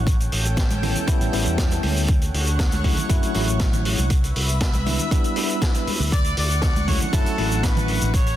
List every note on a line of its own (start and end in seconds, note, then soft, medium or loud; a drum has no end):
0.00 0.29 A1 medium
0.07 2.07 C#4 medium
0.07 2.07 A4 medium
0.07 2.07 G5 medium
0.07 kick loud
0.07 closed hi-hat medium
0.07 shaker medium
0.20 closed hi-hat medium
0.20 shaker soft
0.32 0.92 A1 medium
0.32 open hi-hat loud
0.44 closed hi-hat soft
0.44 muted conga medium
0.44 shaker medium
0.57 kick loud
0.57 snare loud
0.57 closed hi-hat loud
0.57 shaker medium
0.70 closed hi-hat medium
0.70 high conga medium
0.70 shaker medium
0.82 1.05 G3 medium
0.82 1.05 B3 medium
0.82 1.05 C#4 medium
0.82 1.05 E4 medium
0.82 open hi-hat loud
0.82 high conga medium
0.82 low conga medium
0.95 closed hi-hat medium
0.95 low conga medium
0.95 shaker medium
1.07 1.30 G3 medium
1.07 1.30 B3 medium
1.07 1.30 C#4 medium
1.07 1.30 E4 loud
1.07 kick loud
1.07 closed hi-hat loud
1.07 shaker medium
1.21 1.31 A1 medium
1.21 closed hi-hat medium
1.21 shaker soft
1.32 1.44 A1 medium
1.32 2.07 G3 medium
1.32 2.07 B3 medium
1.32 2.08 C#4 medium
1.32 2.08 E4 medium
1.32 open hi-hat loud
1.32 muted conga soft
1.46 1.81 E2 loud
1.46 closed hi-hat soft
1.46 shaker medium
1.58 kick loud
1.58 snare loud
1.58 closed hi-hat loud
1.58 shaker medium
1.71 closed hi-hat medium
1.71 muted conga medium
1.71 shaker medium
1.83 2.31 D2 medium
1.83 open hi-hat loud
1.83 high conga medium
1.96 open hi-hat medium
1.96 shaker medium
2.08 4.09 D3 medium
2.08 4.09 C#5 medium
2.08 4.09 F#5 medium
2.08 kick loud
2.08 closed hi-hat medium
2.08 shaker medium
2.22 closed hi-hat medium
2.22 shaker soft
2.34 2.94 D2 medium
2.34 open hi-hat loud
2.47 closed hi-hat soft
2.47 shaker medium
2.59 kick loud
2.59 snare loud
2.59 closed hi-hat medium
2.59 shaker medium
2.72 closed hi-hat medium
2.72 high conga medium
2.72 shaker soft
2.84 3.07 F#3 medium
2.84 3.07 A3 medium
2.84 3.07 C#4 medium
2.84 3.07 E4 medium
2.84 kick medium
2.84 open hi-hat loud
2.84 high conga medium
2.84 low conga medium
2.97 closed hi-hat medium
2.97 low conga medium
2.97 shaker medium
3.09 3.21 F#2 medium
3.09 3.32 F#3 loud
3.09 3.32 A3 medium
3.09 3.32 C#4 medium
3.09 3.32 E4 loud
3.09 kick loud
3.09 closed hi-hat medium
3.09 shaker medium
3.23 closed hi-hat medium
3.23 shaker soft
3.34 3.95 A1 medium
3.34 4.09 F#3 medium
3.34 4.09 A3 medium
3.34 4.10 C#4 medium
3.34 4.10 E4 medium
3.34 open hi-hat loud
3.34 muted conga soft
3.47 closed hi-hat medium
3.47 shaker medium
3.59 kick loud
3.59 snare loud
3.59 closed hi-hat medium
3.59 shaker medium
3.73 closed hi-hat soft
3.73 low conga medium
3.73 shaker soft
3.85 open hi-hat loud
3.98 4.33 C2 medium
3.98 closed hi-hat medium
3.98 muted conga soft
3.98 high conga medium
3.98 shaker medium
4.10 6.10 B4 medium
4.10 6.10 E5 medium
4.10 kick loud
4.10 closed hi-hat medium
4.10 shaker medium
4.24 closed hi-hat medium
4.24 shaker soft
4.36 4.96 C2 medium
4.36 open hi-hat loud
4.49 closed hi-hat medium
4.49 muted conga soft
4.49 shaker medium
4.60 kick loud
4.60 snare loud
4.60 closed hi-hat loud
4.60 shaker medium
4.73 closed hi-hat soft
4.73 high conga medium
4.73 shaker soft
4.86 5.08 G3 medium
4.86 5.08 B3 medium
4.86 5.09 D4 medium
4.86 5.09 E4 medium
4.86 open hi-hat loud
4.86 high conga medium
4.86 low conga medium
4.99 closed hi-hat medium
4.99 low conga medium
4.99 shaker medium
5.11 5.33 G3 medium
5.11 5.34 B3 medium
5.11 5.34 D4 medium
5.11 5.34 E4 loud
5.11 kick loud
5.11 closed hi-hat medium
5.11 shaker medium
5.24 closed hi-hat medium
5.24 shaker soft
5.36 6.10 G3 medium
5.36 6.11 B3 medium
5.36 6.11 D4 medium
5.36 6.11 E4 medium
5.36 open hi-hat loud
5.36 muted conga soft
5.49 closed hi-hat medium
5.49 shaker medium
5.62 kick loud
5.62 snare loud
5.62 closed hi-hat medium
5.62 shaker medium
5.74 closed hi-hat medium
5.74 muted conga medium
5.74 shaker soft
5.87 muted fingered electric bass stroke soft
5.87 open hi-hat loud
5.87 high conga medium
6.00 6.34 D2 loud
6.00 open hi-hat medium
6.00 shaker medium
6.12 8.12 D3 medium
6.12 6.36 D5 loud
6.12 8.12 F#5 medium
6.12 8.12 C#6 medium
6.12 kick loud
6.12 closed hi-hat medium
6.12 shaker medium
6.24 closed hi-hat medium
6.24 shaker soft
6.37 6.97 D2 loud
6.37 6.85 D5 loud
6.37 open hi-hat loud
6.51 closed hi-hat soft
6.51 shaker medium
6.62 kick loud
6.62 snare loud
6.62 closed hi-hat medium
6.62 shaker medium
6.76 closed hi-hat medium
6.76 high conga medium
6.76 shaker soft
6.88 7.10 F#3 medium
6.88 7.10 A3 medium
6.88 7.10 C#4 medium
6.88 7.11 E4 medium
6.88 7.00 C#5 loud
6.88 kick medium
6.88 open hi-hat loud
6.88 high conga medium
6.88 low conga medium
7.00 closed hi-hat medium
7.00 low conga medium
7.00 shaker medium
7.13 7.24 F#2 medium
7.13 7.35 F#3 medium
7.13 7.35 A3 medium
7.13 7.36 C#4 medium
7.13 7.36 E4 loud
7.13 7.60 A4 medium
7.13 kick loud
7.13 closed hi-hat loud
7.13 shaker medium
7.26 closed hi-hat medium
7.26 shaker medium
7.37 7.98 A1 medium
7.37 8.12 F#3 medium
7.37 8.12 A3 medium
7.37 8.13 C#4 medium
7.37 8.13 E4 medium
7.37 open hi-hat loud
7.37 muted conga soft
7.52 closed hi-hat soft
7.52 shaker medium
7.63 8.14 B4 medium
7.63 kick loud
7.63 snare loud
7.63 closed hi-hat loud
7.63 shaker medium
7.77 closed hi-hat soft
7.77 low conga medium
7.77 shaker soft
7.88 open hi-hat medium
8.01 8.36 A1 medium
8.01 closed hi-hat medium
8.01 muted conga soft
8.01 high conga medium
8.01 shaker medium
8.14 8.36 C#4 medium
8.14 8.36 A4 medium
8.14 8.36 C#5 medium
8.14 8.36 G5 medium
8.14 kick loud
8.14 closed hi-hat medium
8.14 shaker medium
8.27 closed hi-hat medium
8.27 shaker soft